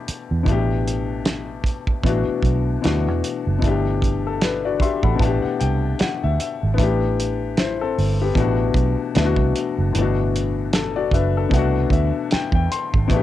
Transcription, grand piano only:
0.00 0.42 B2 medium
0.00 0.44 E3 medium
0.00 0.44 A3 medium
0.00 0.46 D4 medium
0.00 0.47 G4 medium
0.00 0.49 A4 soft
0.00 0.49 F#5 medium
0.43 2.00 B2 medium
0.43 2.01 E3 medium
0.43 2.02 A3 medium
0.49 2.03 D4 medium
0.49 2.04 G4 medium
2.04 2.80 B2 medium
2.04 2.82 E3 medium
2.04 2.83 A3 medium
2.04 2.83 D4 medium
2.08 2.84 F#4 medium
2.82 3.57 B2 medium
2.82 3.59 E3 medium
2.82 3.62 A3 medium
2.82 3.63 D4 medium
2.86 3.64 F#4 medium
3.59 5.14 B2 medium
3.59 5.16 E3 medium
3.63 5.18 A3 medium
3.63 4.02 D4 medium
3.67 4.04 G4 medium
4.27 4.42 A4 medium
4.43 4.64 D4 medium
4.43 4.64 B4 medium
4.65 4.81 F#4 medium
4.65 4.81 D5 medium
4.82 5.03 G4 medium
4.82 5.03 E5 medium
4.82 5.02 C6 medium
5.03 5.42 A4 soft
5.03 5.41 F#5 medium
5.03 5.19 B5 medium
5.15 6.73 B2 medium
5.15 6.74 E3 medium
5.20 6.75 A3 medium
5.20 6.76 D4 medium
5.20 5.41 A5 medium
5.25 6.77 G4 medium
5.42 5.58 F#5 medium
5.60 5.97 G5 medium
6.00 6.21 F#5 medium
6.23 6.38 E5 medium
6.40 6.76 E5 medium
6.74 8.32 E3 medium
6.74 8.20 B3 medium
6.78 8.33 A3 medium
6.78 7.57 D4 medium
6.83 7.58 G4 medium
7.59 7.80 E4 soft
7.59 7.80 C5 medium
7.81 8.19 C4 medium
7.81 8.18 A4 medium
8.22 8.58 B3 medium
8.22 8.58 G4 medium
8.35 9.14 B2 medium
8.35 9.14 E3 medium
8.35 9.16 A3 medium
8.35 9.16 D4 medium
8.40 9.17 F#4 medium
9.15 9.94 B2 medium
9.15 9.93 E3 medium
9.15 9.95 A3 medium
9.15 9.96 D4 medium
9.19 9.25 E4 medium
9.26 9.99 F#4 medium
9.93 10.01 A2 medium
9.93 11.49 E3 medium
9.97 11.48 B2 medium
9.97 11.50 A3 medium
9.97 10.74 D4 medium
10.02 10.75 F#4 medium
10.75 10.96 A4 medium
10.96 11.12 F#4 medium
10.96 11.12 D5 medium
11.13 11.35 D4 medium
11.13 11.35 B4 medium
11.13 11.50 E5 medium
11.37 11.74 A4 medium
11.49 13.05 B2 medium
11.49 13.06 E3 medium
11.53 13.07 A3 medium
11.53 13.09 D4 medium
11.53 11.90 F#5 medium
11.58 13.10 F#4 medium
11.92 12.29 E5 medium
12.32 12.53 G5 medium
12.55 12.70 G5 medium
12.72 13.08 C6 medium
13.08 13.23 B2 medium
13.08 13.23 E3 medium
13.12 13.23 A3 medium
13.12 13.23 D4 medium
13.12 13.23 G4 medium

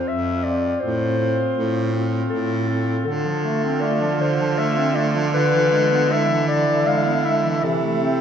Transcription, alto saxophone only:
0.00 0.44 F4 medium
0.45 0.82 F4 medium
0.83 1.18 F4 medium
1.19 1.92 F4 medium
1.95 2.67 F4 medium
2.69 3.06 F4 medium
3.08 6.13 F4 medium
6.11 8.21 E4 medium

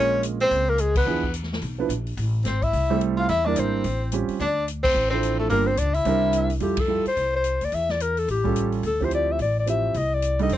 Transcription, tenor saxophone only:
0.00 0.22 C#4 medium
0.41 0.71 C4 medium
0.69 0.82 A#3 medium
0.80 0.96 G#3 medium
0.97 1.32 B3 medium
2.44 2.64 C4 medium
2.63 3.01 E4 medium
3.17 3.27 F4 medium
3.29 3.47 E4 medium
3.45 3.59 D4 medium
3.57 4.12 C4 medium
4.41 4.66 D4 medium
4.83 5.09 C4 medium
5.10 5.37 C4 medium
5.39 5.49 A3 medium
5.49 5.68 A#3 medium
5.66 5.79 C4 medium
5.77 5.97 D4 medium
5.95 6.51 E4 medium
10.53 10.58 C4 medium

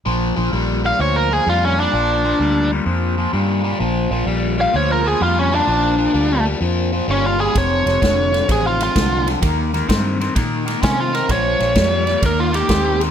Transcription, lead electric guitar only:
0.86 1.00 F5 medium
1.01 1.16 C#5 medium
1.16 1.33 A#4 medium
1.33 1.47 G#4 medium
1.49 1.63 F4 medium
1.65 1.79 C#4 medium
1.80 2.70 D4 medium
4.61 4.75 F5 medium
4.76 4.90 C#5 medium
4.92 5.06 A#4 medium
5.07 5.21 G#4 medium
5.23 5.37 F4 medium
5.39 5.53 C#4 medium
5.55 6.45 D4 medium
7.11 7.25 C#4 medium
7.26 7.40 F4 medium
7.41 7.56 G#4 medium
7.58 8.47 C#5 medium
8.52 8.65 G#4 medium
8.67 8.81 F4 medium
8.83 9.27 F4 medium
10.84 10.99 C#4 medium
11.00 11.14 F4 medium
11.15 11.29 A#4 medium
11.32 12.21 C#5 medium
12.26 12.39 A#4 medium
12.40 12.54 F4 medium
12.55 13.00 G4 medium

